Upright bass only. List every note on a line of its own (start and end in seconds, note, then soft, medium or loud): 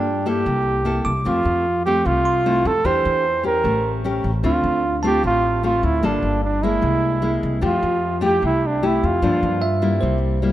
0.00 0.42 G2 medium
0.46 1.02 C2 medium
1.05 1.24 C2 medium
1.26 1.44 F2 loud
1.45 2.01 F2 medium
2.05 2.61 C2 medium
2.65 2.83 F2 medium
2.85 3.03 E2 medium
3.05 3.60 E2 medium
3.64 4.20 A1 medium
4.24 4.42 A1 medium
4.44 4.62 D2 medium
4.64 5.19 D2 medium
5.24 5.79 A1 medium
5.83 6.01 D2 medium
6.03 6.21 G1 medium
6.22 6.78 G1 medium
6.82 7.38 C2 medium
7.43 7.61 C2 medium
7.62 7.81 F2 loud
7.83 8.38 F2 medium
8.43 8.98 C2 medium
9.03 9.21 F2 medium
9.22 9.40 G2 medium
9.43 9.98 G2 medium
10.03 10.52 C2 medium